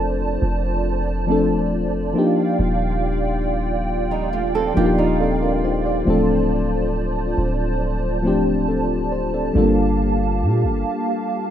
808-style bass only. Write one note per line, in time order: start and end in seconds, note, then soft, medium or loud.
0.00 0.38 F1 loud
0.42 1.52 F1 loud
1.51 1.85 D#1 loud
1.84 2.14 F1 medium
2.59 4.73 D#1 loud
4.77 6.03 D#1 loud
6.07 7.34 D1 loud
7.38 9.51 D1 loud
9.55 10.44 G1 loud
10.42 10.65 A#2 loud
10.64 10.84 G1 medium